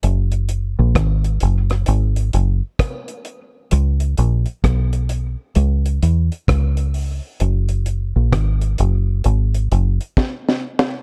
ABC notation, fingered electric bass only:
X:1
M:4/4
L:1/16
Q:"Swing 16ths" 1/4=65
K:F#mix
V:1 name="Fingered electric bass" clef=bass
F,,,3 A,,, G,,,2 F,,,2 G,,,2 F,,, z4 z | C,,2 A,,, z B,,,3 z C,,2 E,, z C,,3 z | F,,,3 A,,, G,,,2 F,,,2 G,,,2 F,,, z4 z |]